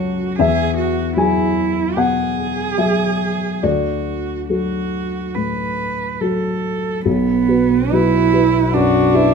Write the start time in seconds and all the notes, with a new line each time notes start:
Already playing: C#2 F#3 F#4 C#5 A5 B5
0.39 E2 G#4 E5
0.78 F#4
1.16 F#3 E4 F#4 G#4 G#5
1.96 B2 G#4 F#5
2.78 F#3 F#4 G#4 E5
3.63 D2 F#4 D5
4.49 F#3 F#4 A4
5.35 A2 B4
6.21 F#3 F#4 A4
7.05 B1 F#3 B3 F#4 B4
7.48 F#4 B4
7.92 F#3 E4 F#4 B4
8.33 F#4 B4
8.74 F#2 D4 F#4
9.14 E4 F#4 B4